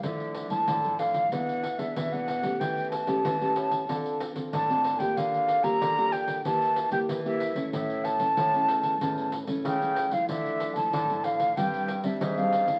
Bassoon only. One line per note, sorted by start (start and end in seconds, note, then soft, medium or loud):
0.04 0.59 D3 medium
0.69 0.96 D3 loud
1.00 1.27 D3 medium
1.33 1.87 E3 medium
1.96 2.51 E3 loud
2.60 3.15 E3 medium
3.25 3.52 E3 loud
3.56 3.83 A2 medium
3.89 4.20 D3 medium
4.53 5.07 D3 medium
5.17 5.71 D3 medium
5.81 6.08 D3 loud
6.12 6.40 D3 medium
6.45 7.00 E3 medium
7.09 7.64 E3 loud
7.73 8.27 A2 medium
8.37 8.64 A2 loud
8.69 8.96 E2 medium
9.01 9.33 E2 medium
9.65 10.19 C#3 medium
10.29 10.84 D3 medium
10.93 11.20 D3 loud
11.25 11.52 D3 medium
11.57 12.11 G2 medium
12.21 12.75 G#2 loud